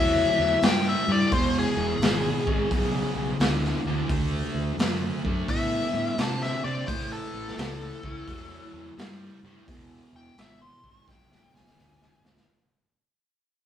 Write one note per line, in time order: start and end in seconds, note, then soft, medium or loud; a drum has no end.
0.00 0.24 E2 medium
0.00 0.58 A2 medium
0.00 0.58 F#3 loud
0.00 0.62 E5 loud
0.38 0.55 E2 medium
0.62 0.94 G2 medium
0.62 1.04 A2 medium
0.62 1.04 G3 medium
0.62 0.86 G5 medium
0.62 snare loud
0.62 open hi-hat medium
0.89 1.10 E5 medium
1.08 1.24 G2 medium
1.08 1.30 A2 medium
1.08 1.30 G3 medium
1.12 1.33 D5 medium
1.32 1.63 E1 medium
1.32 1.97 E2 medium
1.32 1.98 B2 medium
1.32 1.55 C5 loud
1.32 kick loud
1.32 open hi-hat medium
1.59 3.62 G#4 medium
1.76 1.93 E1 medium
1.99 2.32 G#1 medium
1.99 2.43 E2 medium
1.99 2.43 B2 medium
1.99 snare medium
1.99 open hi-hat medium
2.47 2.64 G#1 medium
2.47 2.68 E2 medium
2.47 2.69 B2 medium
2.47 kick medium
2.70 3.02 B1 medium
2.70 3.36 E2 medium
2.70 3.36 C#3 medium
2.70 kick loud
2.70 open hi-hat medium
3.15 3.32 B1 medium
3.40 3.72 D2 medium
3.40 3.82 E2 medium
3.40 3.82 D3 loud
3.40 snare loud
3.40 open hi-hat soft
3.64 snare soft
3.85 4.02 D2 medium
3.85 4.08 E2 medium
3.85 4.08 D3 medium
4.09 4.41 D2 loud
4.09 4.75 D3 medium
4.09 4.75 A3 medium
4.09 kick loud
4.09 open hi-hat medium
4.54 4.71 D2 medium
4.77 5.10 F#2 medium
4.77 5.21 D3 medium
4.77 5.21 A3 medium
4.77 snare loud
4.77 open hi-hat medium
5.24 5.41 F#2 medium
5.24 5.47 D3 medium
5.24 5.47 A3 medium
5.24 kick medium
5.48 5.80 A2 loud
5.48 6.14 D3 medium
5.48 6.15 B3 loud
5.48 6.17 E5 medium
5.48 kick loud
5.48 open hi-hat medium
5.94 6.11 A2 medium
6.18 6.50 C3 medium
6.18 6.60 D3 medium
6.18 6.60 C4 medium
6.18 6.43 A5 medium
6.18 snare medium
6.18 open hi-hat medium
6.43 6.64 E5 medium
6.43 snare soft
6.64 6.81 C3 medium
6.64 6.86 D3 medium
6.64 6.86 C4 medium
6.64 6.87 D5 medium
6.88 7.20 A1 loud
6.88 7.53 A2 medium
6.88 7.53 E3 medium
6.88 7.11 C5 medium
6.88 kick loud
6.88 open hi-hat medium
7.12 9.17 A4 loud
7.34 7.50 A1 medium
7.48 snare soft
7.57 7.89 C#2 medium
7.57 7.99 A2 medium
7.57 7.99 E3 medium
7.57 snare loud
7.57 open hi-hat medium
8.03 8.20 C#2 medium
8.03 8.26 A2 medium
8.03 8.26 E3 medium
8.03 kick medium
8.27 8.59 E2 medium
8.27 8.93 A2 medium
8.27 8.93 F#3 medium
8.27 kick loud
8.27 open hi-hat soft
8.73 8.90 E2 medium
8.97 9.29 G2 medium
8.97 9.38 A2 medium
8.97 9.39 G3 medium
8.97 snare loud
8.97 open hi-hat soft
9.43 9.59 G2 medium
9.43 9.66 A2 medium
9.43 9.65 G3 medium
9.68 9.99 E1 medium
9.68 10.34 E2 medium
9.68 10.34 B2 medium
9.68 kick loud
9.68 open hi-hat medium
10.13 10.29 E1 medium
10.13 10.37 G5 medium
10.38 10.69 G#1 medium
10.38 10.79 E2 medium
10.38 10.79 B2 medium
10.38 10.60 E5 medium
10.38 snare loud
10.38 open hi-hat medium
10.62 11.06 C6 medium
10.83 11.00 G#1 medium
10.83 11.06 E2 medium
10.83 11.05 B2 medium
10.83 kick medium
11.08 11.39 B1 medium
11.08 11.72 E2 medium
11.08 11.73 C#3 loud
11.08 11.53 G5 medium
11.08 kick loud
11.08 snare medium
11.32 snare medium
11.53 11.69 B1 medium
11.53 12.22 G#5 loud
11.53 snare medium
11.67 snare medium
11.76 12.07 D2 medium
11.76 12.18 E2 medium
11.76 12.18 D3 loud
11.76 snare medium
12.02 snare medium
12.22 12.38 D2 medium
12.22 12.44 E2 medium
12.22 12.44 D3 medium
12.22 snare medium
12.37 snare medium